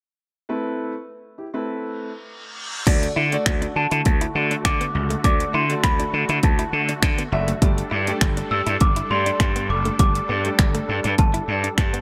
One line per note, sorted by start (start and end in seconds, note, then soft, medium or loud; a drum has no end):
0.49 0.91 A3 medium
0.49 0.91 C4 medium
0.49 0.92 E4 medium
0.49 0.92 B4 medium
1.38 1.45 E4 soft
1.38 1.46 G4 medium
1.54 2.09 A3 medium
1.54 2.09 C4 medium
1.54 2.09 E4 medium
1.54 2.09 B4 medium
1.68 reverse cymbal medium
2.87 3.06 D2 loud
2.87 7.58 D3 medium
2.87 3.08 A3 medium
2.87 7.58 A3 medium
2.87 2.97 D4 medium
2.87 3.08 D4 medium
2.87 7.58 F#4 medium
2.87 3.08 F#4 medium
2.87 3.08 D5 loud
2.87 kick loud
2.87 closed hi-hat medium
2.87 crash medium
3.02 muted clean electric guitar stroke soft
3.02 closed hi-hat soft
3.16 3.36 D3 medium
3.16 3.27 E4 medium
3.32 3.80 A3 medium
3.32 3.80 D4 medium
3.32 3.80 F#4 medium
3.32 3.80 D5 loud
3.32 closed hi-hat medium
3.46 3.66 D2 medium
3.46 finger snap loud
3.46 kick loud
3.46 closed hi-hat medium
3.62 3.71 D4 medium
3.62 closed hi-hat soft
3.76 3.86 D3 medium
3.76 4.68 A5 medium
3.76 muted clean electric guitar stroke soft
3.91 4.01 D3 medium
3.91 4.01 E4 medium
3.91 closed hi-hat medium
4.05 4.25 D2 loud
4.05 kick loud
4.05 closed hi-hat medium
4.21 4.31 E4 medium
4.21 closed hi-hat medium
4.35 4.54 D3 loud
4.35 4.77 A3 medium
4.35 4.78 D4 medium
4.35 4.78 F#4 medium
4.35 4.78 D5 medium
4.35 muted clean electric guitar stroke soft
4.51 4.60 D4 medium
4.51 closed hi-hat medium
4.65 4.84 D3 loud
4.65 5.23 D6 loud
4.65 finger snap loud
4.65 kick loud
4.65 closed hi-hat medium
4.81 4.90 B3 medium
4.81 closed hi-hat medium
4.95 5.14 C#2 medium
4.95 muted clean electric guitar stroke soft
5.10 5.19 A3 medium
5.10 closed hi-hat medium
5.24 5.44 D2 loud
5.24 5.46 A3 medium
5.24 5.46 D4 medium
5.24 5.35 D4 medium
5.24 5.46 F#4 medium
5.24 5.46 D5 medium
5.24 5.55 D6 loud
5.24 kick loud
5.24 closed hi-hat medium
5.40 muted clean electric guitar stroke soft
5.40 closed hi-hat soft
5.54 5.73 D3 medium
5.54 5.64 E4 medium
5.54 5.85 C6 medium
5.69 6.25 A3 medium
5.69 6.25 D4 medium
5.69 6.25 F#4 medium
5.69 6.25 D5 medium
5.69 closed hi-hat medium
5.83 6.03 D2 loud
5.83 6.45 B5 medium
5.83 finger snap loud
5.83 kick loud
5.83 closed hi-hat medium
6.00 6.09 D4 medium
6.00 closed hi-hat medium
6.13 6.24 D3 loud
6.13 muted clean electric guitar stroke soft
6.29 6.38 D3 medium
6.29 6.39 E4 medium
6.29 closed hi-hat soft
6.43 6.63 D2 loud
6.43 7.28 A5 medium
6.43 kick loud
6.43 closed hi-hat medium
6.59 6.68 E4 medium
6.59 closed hi-hat medium
6.73 6.92 D3 medium
6.73 muted clean electric guitar stroke soft
6.89 6.98 D4 medium
6.89 closed hi-hat medium
7.03 7.22 D3 loud
7.03 finger snap loud
7.03 kick loud
7.03 closed hi-hat medium
7.18 7.27 B3 medium
7.18 closed hi-hat medium
7.32 7.51 F#1 loud
7.32 7.47 A3 medium
7.32 7.47 D4 medium
7.32 7.47 F#4 medium
7.32 7.47 E5 loud
7.32 muted clean electric guitar stroke soft
7.48 7.57 A3 medium
7.48 closed hi-hat medium
7.62 7.81 G1 loud
7.62 12.01 G3 medium
7.62 7.72 G3 medium
7.62 7.83 A3 medium
7.62 12.01 D4 medium
7.62 7.83 D4 medium
7.62 7.83 G4 medium
7.62 12.01 A4 medium
7.62 7.84 D5 loud
7.62 kick loud
7.62 closed hi-hat medium
7.78 muted clean electric guitar stroke soft
7.78 closed hi-hat soft
7.91 8.11 G2 loud
7.91 8.02 E4 medium
8.07 8.55 A3 medium
8.07 8.55 D4 medium
8.07 8.55 G4 medium
8.07 8.55 D5 loud
8.07 closed hi-hat medium
8.21 8.41 G1 loud
8.21 finger snap loud
8.21 kick loud
8.21 closed hi-hat medium
8.37 8.46 D4 medium
8.37 closed hi-hat medium
8.51 8.61 G2 loud
8.51 8.82 E6 loud
8.51 muted clean electric guitar stroke soft
8.67 8.76 G2 loud
8.67 8.76 E4 medium
8.67 closed hi-hat medium
8.80 9.00 G1 loud
8.80 9.08 D6 loud
8.80 kick loud
8.80 closed hi-hat medium
8.96 9.06 E4 medium
8.96 closed hi-hat medium
9.10 9.30 G2 medium
9.10 9.53 A3 medium
9.10 9.53 D4 medium
9.10 9.53 G4 medium
9.10 9.53 D5 medium
9.10 9.72 C6 loud
9.10 muted clean electric guitar stroke soft
9.26 9.35 D4 medium
9.26 closed hi-hat medium
9.40 9.71 G2 loud
9.40 finger snap loud
9.40 kick loud
9.40 closed hi-hat medium
9.56 9.65 B3 medium
9.56 closed hi-hat medium
9.70 9.89 F#1 medium
9.70 9.99 D6 loud
9.70 muted clean electric guitar stroke soft
9.85 9.95 A3 medium
9.85 closed hi-hat soft
9.99 10.19 G1 loud
9.99 10.10 G3 medium
9.99 10.21 A3 medium
9.99 10.21 D4 medium
9.99 10.21 G4 medium
9.99 10.21 D5 medium
9.99 11.22 D6 loud
9.99 kick loud
9.99 closed hi-hat medium
10.15 muted clean electric guitar stroke soft
10.15 closed hi-hat soft
10.29 10.49 G2 loud
10.29 10.39 B3 medium
10.45 11.00 A3 medium
10.45 11.00 D4 medium
10.45 11.00 G4 medium
10.45 11.00 D5 medium
10.45 closed hi-hat medium
10.59 10.78 G1 medium
10.59 finger snap loud
10.59 kick loud
10.59 closed hi-hat medium
10.75 10.84 A3 medium
10.75 closed hi-hat medium
10.89 10.99 G2 loud
10.89 muted clean electric guitar stroke soft
11.04 11.14 G2 loud
11.04 11.13 D4 medium
11.04 closed hi-hat medium
11.18 11.38 G1 loud
11.18 12.01 A5 medium
11.18 kick loud
11.18 closed hi-hat medium
11.34 11.43 E4 medium
11.34 closed hi-hat medium
11.48 11.67 G2 medium
11.48 muted clean electric guitar stroke soft
11.64 11.73 D4 medium
11.64 closed hi-hat medium
11.78 11.97 G2 loud
11.78 finger snap loud
11.78 kick loud
11.78 closed hi-hat medium
11.93 12.01 B3 medium
11.93 closed hi-hat medium